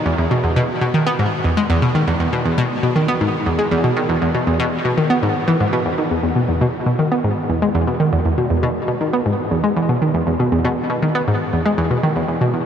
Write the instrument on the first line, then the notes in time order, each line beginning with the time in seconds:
synth arpeggio sound
0.06 E2
0.18 E2
0.31 B2
0.44 E2
0.56 B2
0.81 B2
0.94 D#3
1.07 B3
1.19 G#2
1.44 E2
1.57 G#3
1.70 E2
1.82 B2
1.95 D#3
2.07 E2
2.20 E2
2.33 B2
2.45 E2
2.58 B2
2.83 B2
2.96 D#3
3.08 B3
3.21 G#2
3.46 E2
3.59 G#3
3.71 E2
3.84 B2
3.97 D#3
4.09 E2
4.22 E2
4.34 B2
4.47 E2
4.60 B2
4.85 B2
4.97 D#3
5.10 B3
5.23 G#2
5.48 E3
5.60 G#2
5.73 B2
5.85 E2
5.98 D#3
6.11 E2
6.23 E2
6.36 B2
6.49 E2
6.61 B2
6.86 B2
6.99 D#3
7.12 B3
7.24 G#2
7.50 E2
7.62 G#3
7.75 E2
7.87 B2
8.00 D#3
8.13 E2
8.25 E2
8.38 B2
8.50 E2
8.63 B2
8.88 B2
9.01 D#3
9.13 B3
9.26 G#2
9.51 E2
9.64 G#3
9.76 E2
9.89 B2
10.02 D#3
10.14 E2
10.27 E2
10.40 B2
10.52 E2
10.65 B2
10.90 B2
11.02 D#3
11.15 B3
11.28 G#2
11.53 E2
11.66 G#3
11.78 E2
11.91 B2
12.03 D#3
12.16 E2
12.28 E2
12.41 B2
12.54 E2